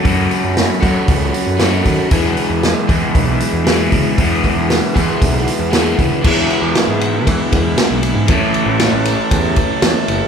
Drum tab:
CC |--------|--------|--------|x-------|
RD |--------|--------|--------|-xxxxxxx|
HH |oooooooo|oooooooo|oooooooo|--------|
SD |--o---o-|--o---o-|--o---o-|--o---o-|
BD |o--oo--o|o--oo--o|oo-oo--o|o---oo--|

CC |--------|
RD |xxxxxxxx|
HH |--------|
SD |--o---o-|
BD |o---oo--|